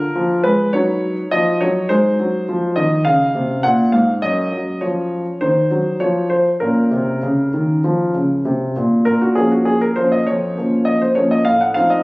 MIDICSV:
0, 0, Header, 1, 2, 480
1, 0, Start_track
1, 0, Key_signature, -5, "minor"
1, 0, Tempo, 580271
1, 1572, Time_signature, 4, 2, 24, 8
1, 3010, Tempo, 590551
1, 4930, Tempo, 613497
1, 7330, Tempo, 596421
1, 9713, End_track
2, 0, Start_track
2, 0, Title_t, "Grand piano"
2, 0, Program_c, 0, 0
2, 0, Note_on_c, 0, 65, 36
2, 0, Note_on_c, 0, 70, 84
2, 128, Note_on_c, 0, 53, 53
2, 331, Note_off_c, 0, 70, 0
2, 354, Note_off_c, 0, 53, 0
2, 360, Note_on_c, 0, 71, 73
2, 368, Note_on_c, 0, 56, 52
2, 574, Note_off_c, 0, 65, 0
2, 594, Note_off_c, 0, 56, 0
2, 602, Note_off_c, 0, 71, 0
2, 604, Note_on_c, 0, 73, 80
2, 612, Note_on_c, 0, 54, 60
2, 613, Note_on_c, 0, 63, 36
2, 958, Note_off_c, 0, 54, 0
2, 1056, Note_off_c, 0, 73, 0
2, 1087, Note_on_c, 0, 75, 82
2, 1095, Note_on_c, 0, 53, 55
2, 1323, Note_off_c, 0, 53, 0
2, 1329, Note_on_c, 0, 73, 77
2, 1331, Note_off_c, 0, 75, 0
2, 1338, Note_on_c, 0, 54, 58
2, 1543, Note_off_c, 0, 63, 0
2, 1563, Note_off_c, 0, 54, 0
2, 1564, Note_on_c, 0, 72, 82
2, 1570, Note_off_c, 0, 73, 0
2, 1570, Note_on_c, 0, 63, 36
2, 1573, Note_on_c, 0, 56, 60
2, 1800, Note_off_c, 0, 56, 0
2, 1817, Note_on_c, 0, 54, 55
2, 2042, Note_off_c, 0, 54, 0
2, 2057, Note_on_c, 0, 53, 53
2, 2251, Note_off_c, 0, 72, 0
2, 2280, Note_off_c, 0, 53, 0
2, 2281, Note_on_c, 0, 75, 72
2, 2288, Note_on_c, 0, 51, 55
2, 2494, Note_off_c, 0, 63, 0
2, 2500, Note_off_c, 0, 75, 0
2, 2516, Note_off_c, 0, 51, 0
2, 2520, Note_on_c, 0, 77, 85
2, 2527, Note_on_c, 0, 61, 38
2, 2529, Note_on_c, 0, 49, 53
2, 2756, Note_off_c, 0, 49, 0
2, 2771, Note_on_c, 0, 48, 50
2, 2998, Note_off_c, 0, 48, 0
2, 3004, Note_off_c, 0, 77, 0
2, 3005, Note_on_c, 0, 78, 85
2, 3013, Note_on_c, 0, 46, 59
2, 3221, Note_off_c, 0, 78, 0
2, 3237, Note_off_c, 0, 46, 0
2, 3241, Note_on_c, 0, 77, 73
2, 3250, Note_on_c, 0, 44, 52
2, 3387, Note_off_c, 0, 77, 0
2, 3453, Note_off_c, 0, 61, 0
2, 3476, Note_off_c, 0, 44, 0
2, 3483, Note_on_c, 0, 75, 87
2, 3491, Note_on_c, 0, 42, 61
2, 3493, Note_on_c, 0, 61, 36
2, 3717, Note_off_c, 0, 42, 0
2, 3729, Note_on_c, 0, 54, 56
2, 3955, Note_off_c, 0, 54, 0
2, 3962, Note_on_c, 0, 73, 64
2, 3964, Note_off_c, 0, 75, 0
2, 3969, Note_on_c, 0, 53, 50
2, 4315, Note_off_c, 0, 53, 0
2, 4419, Note_off_c, 0, 61, 0
2, 4446, Note_off_c, 0, 73, 0
2, 4448, Note_on_c, 0, 72, 74
2, 4454, Note_on_c, 0, 51, 53
2, 4454, Note_on_c, 0, 63, 34
2, 4679, Note_off_c, 0, 51, 0
2, 4692, Note_on_c, 0, 54, 48
2, 4900, Note_off_c, 0, 63, 0
2, 4920, Note_off_c, 0, 54, 0
2, 4929, Note_on_c, 0, 73, 69
2, 4930, Note_off_c, 0, 72, 0
2, 4934, Note_on_c, 0, 53, 51
2, 5143, Note_off_c, 0, 73, 0
2, 5162, Note_on_c, 0, 72, 65
2, 5276, Note_off_c, 0, 53, 0
2, 5307, Note_off_c, 0, 72, 0
2, 5399, Note_on_c, 0, 70, 69
2, 5407, Note_on_c, 0, 46, 48
2, 5408, Note_on_c, 0, 61, 34
2, 5634, Note_off_c, 0, 46, 0
2, 5642, Note_on_c, 0, 48, 48
2, 5870, Note_off_c, 0, 48, 0
2, 5887, Note_on_c, 0, 49, 46
2, 6114, Note_off_c, 0, 49, 0
2, 6133, Note_on_c, 0, 51, 46
2, 6358, Note_off_c, 0, 51, 0
2, 6370, Note_on_c, 0, 53, 50
2, 6596, Note_off_c, 0, 53, 0
2, 6606, Note_on_c, 0, 49, 43
2, 6813, Note_off_c, 0, 70, 0
2, 6835, Note_off_c, 0, 49, 0
2, 6847, Note_on_c, 0, 48, 49
2, 7077, Note_off_c, 0, 48, 0
2, 7091, Note_on_c, 0, 46, 44
2, 7299, Note_off_c, 0, 61, 0
2, 7316, Note_off_c, 0, 46, 0
2, 7318, Note_on_c, 0, 70, 75
2, 7328, Note_on_c, 0, 46, 47
2, 7444, Note_off_c, 0, 70, 0
2, 7448, Note_on_c, 0, 66, 53
2, 7560, Note_on_c, 0, 68, 66
2, 7563, Note_off_c, 0, 46, 0
2, 7570, Note_off_c, 0, 66, 0
2, 7570, Note_on_c, 0, 53, 36
2, 7575, Note_on_c, 0, 58, 34
2, 7576, Note_on_c, 0, 61, 39
2, 7685, Note_off_c, 0, 68, 0
2, 7690, Note_on_c, 0, 66, 55
2, 7801, Note_on_c, 0, 68, 66
2, 7810, Note_off_c, 0, 66, 0
2, 7916, Note_off_c, 0, 53, 0
2, 7918, Note_off_c, 0, 58, 0
2, 7919, Note_off_c, 0, 61, 0
2, 7925, Note_off_c, 0, 68, 0
2, 7930, Note_on_c, 0, 70, 65
2, 8046, Note_on_c, 0, 72, 68
2, 8050, Note_off_c, 0, 70, 0
2, 8054, Note_on_c, 0, 53, 36
2, 8058, Note_on_c, 0, 58, 35
2, 8061, Note_on_c, 0, 61, 38
2, 8168, Note_off_c, 0, 72, 0
2, 8175, Note_on_c, 0, 75, 66
2, 8225, Note_off_c, 0, 53, 0
2, 8228, Note_off_c, 0, 58, 0
2, 8230, Note_off_c, 0, 61, 0
2, 8292, Note_off_c, 0, 75, 0
2, 8294, Note_on_c, 0, 73, 67
2, 8303, Note_on_c, 0, 41, 40
2, 8530, Note_off_c, 0, 41, 0
2, 8543, Note_on_c, 0, 53, 34
2, 8544, Note_on_c, 0, 58, 34
2, 8548, Note_on_c, 0, 61, 35
2, 8764, Note_on_c, 0, 75, 68
2, 8774, Note_off_c, 0, 73, 0
2, 8885, Note_off_c, 0, 53, 0
2, 8886, Note_off_c, 0, 58, 0
2, 8888, Note_off_c, 0, 75, 0
2, 8889, Note_off_c, 0, 61, 0
2, 8898, Note_on_c, 0, 72, 60
2, 9006, Note_on_c, 0, 73, 66
2, 9015, Note_off_c, 0, 72, 0
2, 9017, Note_on_c, 0, 53, 34
2, 9020, Note_on_c, 0, 58, 35
2, 9024, Note_on_c, 0, 61, 40
2, 9129, Note_off_c, 0, 73, 0
2, 9134, Note_on_c, 0, 75, 68
2, 9188, Note_off_c, 0, 53, 0
2, 9189, Note_off_c, 0, 58, 0
2, 9192, Note_off_c, 0, 61, 0
2, 9244, Note_on_c, 0, 77, 79
2, 9252, Note_on_c, 0, 45, 50
2, 9253, Note_off_c, 0, 75, 0
2, 9368, Note_off_c, 0, 77, 0
2, 9374, Note_on_c, 0, 78, 63
2, 9483, Note_on_c, 0, 77, 77
2, 9484, Note_off_c, 0, 45, 0
2, 9492, Note_off_c, 0, 78, 0
2, 9492, Note_on_c, 0, 53, 38
2, 9497, Note_on_c, 0, 60, 36
2, 9497, Note_on_c, 0, 63, 41
2, 9606, Note_off_c, 0, 77, 0
2, 9609, Note_on_c, 0, 75, 63
2, 9713, Note_off_c, 0, 53, 0
2, 9713, Note_off_c, 0, 60, 0
2, 9713, Note_off_c, 0, 63, 0
2, 9713, Note_off_c, 0, 75, 0
2, 9713, End_track
0, 0, End_of_file